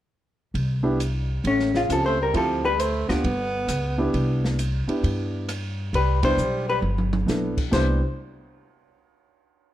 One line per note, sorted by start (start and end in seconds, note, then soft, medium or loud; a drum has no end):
0.54 1.40 C2 medium
0.54 kick soft
0.54 ride soft
0.83 0.97 B3 medium
0.83 0.97 D4 medium
0.83 0.97 E4 medium
0.83 0.97 G4 medium
1.00 hi-hat pedal medium
1.00 ride medium
1.44 1.86 A1 medium
1.44 1.73 A2 medium
1.44 1.75 C#4 medium
1.44 kick soft
1.44 ride medium
1.59 snare soft
1.74 1.88 C#3 medium
1.74 1.90 F4 medium
1.74 snare soft
1.89 2.31 C#2 medium
1.89 2.04 F3 medium
1.89 2.16 C4 soft
1.89 2.16 C#4 soft
1.89 2.16 F4 soft
1.89 2.16 G4 medium
1.89 2.05 A4 medium
1.89 cross-stick medium
1.89 hi-hat pedal soft
1.89 ride medium
2.06 2.20 A3 medium
2.06 2.19 C5 medium
2.21 2.34 G3 medium
2.21 2.36 A#4 medium
2.33 3.05 D2 medium
2.33 2.63 F3 medium
2.33 2.60 C4 medium
2.33 2.61 E4 medium
2.33 2.61 F4 medium
2.33 2.62 G4 medium
2.33 2.65 A4 medium
2.33 kick soft
2.33 ride soft
2.64 2.82 G3 medium
2.64 2.81 B4 medium
2.80 3.10 A3 medium
2.80 3.09 C5 medium
2.80 hi-hat pedal medium
2.80 ride medium
3.08 3.23 D2 medium
3.08 3.22 B3 medium
3.08 4.14 B3 medium
3.08 3.22 D4 medium
3.08 3.22 F4 medium
3.08 3.23 G4 medium
3.08 4.14 D5 medium
3.08 snare soft
3.08 ride soft
3.24 3.66 G1 medium
3.24 kick soft
3.24 ride soft
3.68 4.10 C#2 medium
3.68 cross-stick medium
3.68 hi-hat pedal medium
3.68 ride medium
3.98 4.55 B3 medium
3.98 4.55 D4 medium
3.98 4.55 E4 medium
3.98 4.56 G4 medium
4.14 4.84 C2 medium
4.14 kick soft
4.14 ride soft
4.45 snare soft
4.59 hi-hat pedal medium
4.59 ride medium
4.87 5.45 B3 medium
4.87 5.45 D4 medium
4.87 5.45 E4 medium
4.87 5.45 G4 medium
4.87 muted upright bass stroke soft
4.87 ride soft
5.03 5.89 G2 medium
5.03 kick soft
5.03 ride medium
5.49 cross-stick medium
5.49 hi-hat pedal soft
5.49 ride medium
5.93 6.35 C2 medium
5.93 6.22 G3 medium
5.93 6.23 B4 medium
5.93 kick soft
5.93 ride medium
6.22 6.64 G3 medium
6.22 6.36 B3 medium
6.22 6.36 D4 medium
6.22 6.36 E4 medium
6.22 6.37 G4 medium
6.22 6.65 C5 loud
6.22 kick medium
6.22 ride medium
6.37 6.79 B1 medium
6.37 hi-hat pedal soft
6.68 6.82 G3 medium
6.68 6.78 B4 medium
6.82 7.24 G1 medium
6.82 mid tom soft
6.98 mid tom soft
7.13 mid tom medium
7.26 7.68 B1 medium
7.26 7.53 B3 medium
7.26 7.54 D4 soft
7.26 7.54 E4 soft
7.26 7.54 A4 medium
7.26 snare soft
7.26 hi-hat pedal medium
7.57 kick medium
7.57 crash medium
7.71 8.00 C2 medium
7.71 7.99 G3 medium
7.71 7.98 B3 medium
7.71 7.98 D4 medium
7.71 7.99 E4 medium
7.71 7.99 G4 medium
7.71 8.00 C5 medium
7.71 kick medium
7.71 snare medium
7.71 crash medium